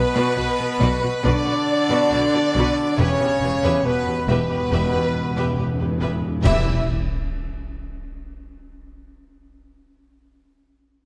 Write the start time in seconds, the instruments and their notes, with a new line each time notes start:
Already playing: timpani B2, trombone section B2, french horn section B3, flute B4, trumpet section B4, violin section B4
0.15 cello section B2, viola section F#4 B4, violin section D5
0.37 double bass section B1, cello section B2, viola section F#4 B4, violin section F#4
0.59 cello section B2, viola section F#4 B4, violin section B4
0.80 double bass section B1, cello section B2, viola section F#4 B4, violin section D5
1.01 cello section B2, viola section F#4 B4, violin section F#4
1.23 double bass section B1, cello section B2, trombone section D3, french horn section D4, viola section F#4 B4, violin section D5, trumpet section D5, flute D5
1.45 cello section B2, violin section F#4, viola section F#4 B4
1.88 cello section B2, viola section F#4 B4, violin section D5
2.10 double bass section B1, cello section B2, violin section F#4, viola section F#4 B4
2.33 cello section B2, viola section F#4 B4, violin section B4
2.53 double bass section B1, cello section B2, viola section F#4, violin section D5
2.57 viola section B4
2.97 double bass section E1, cello section E2, trombone section C#3, french horn section C#4, viola section G4 B4, violin section B4 C#5 E5, trumpet section C#5, flute C#5
3.14 timpani E2
3.19 cello section E2, timpani E2, violin section E4 G4, viola section G4 B4
3.28 timpani E2
3.35 timpani E2
3.41 double bass section E1, cello section E2, timpani E2, violin section G4 B4, viola section G4 B4
3.50 timpani E2
3.58 timpani E2
3.63 cello section E2, timpani E2, viola section G4 B4, violin section B4 E5
3.72 timpani E2
3.80 double bass section E1, timpani E2, trombone section B2
3.84 cello section E2, timpani E2, french horn section B3, violin section E4 G4 B4, viola section G4 B4, trumpet section B4, flute B4
3.96 timpani E2
4.03 timpani E2, cello section E2
4.08 timpani E2, viola section G4 B4, violin section G4 B4
4.18 timpani E2
4.25 double bass section E1, timpani E2, cello section E2, trombone section B2, violin section B4 E5, trumpet section B4
4.29 timpani E2, french horn section B3, viola section G4 B4, flute B4, violin section B4
4.40 timpani E2
4.47 timpani E2, cello section E2, violin section E4 G4, viola section G4 B4
4.55 timpani E2
4.62 timpani E2
4.69 double bass section E1, timpani E2, cello section E2, viola section G4 B4, violin section B4 E5
4.77 timpani E2
4.84 timpani E2
4.92 timpani E2, cello section E2, violin section E4 G4, viola section G4 B4
5.00 timpani E2
5.08 timpani E2
5.15 timpani E2
5.23 timpani E2
5.30 timpani E2
5.36 cello section E2, timpani E2, viola section G4 B4, violin section B4 E5
5.45 timpani E2
5.53 timpani E2
5.57 double bass section E1, cello section E2, timpani E2, violin section E4 G4, viola section G4 B4
5.68 timpani E2
5.75 timpani E2, violin section G4
5.80 cello section E2, timpani E2, viola section G4 B4, violin section B4
5.90 timpani E2
5.98 double bass section E1, timpani E2, viola section G4 B4, violin section B4 E5
6.02 cello section E2, timpani E2
6.14 timpani E2
6.21 timpani E2
6.28 timpani E2
6.37 timpani E2
6.44 double bass section E1, cello section E2, timpani E2, trombone section E3, viola section E4 G4, french horn section E4, violin section B4 E5, trumpet section E5, flute E5, concert bass drum, crash, impact